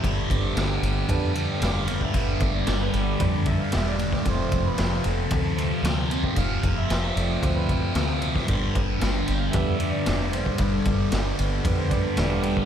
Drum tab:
RD |x-x-x-x-x-x-x-x-|x-x-x-x-x-x-x-x-|x-x-x-x-x-x-x-x-|x-x-x-x-x-x-x-x-|
SD |----o-------o---|----o-------o--o|----o-------o---|----o-------o--o|
BD |o-o-----o------o|o-o-----o-o----o|o-o-----o------o|o-o-----o-o----o|

RD |x-x-x-x-x-x-x-x-|x-x-x-x-x-x-x-x-|
SD |----o-------o---|----o-------o---|
BD |o-o-----o------o|o-o-----o-o----o|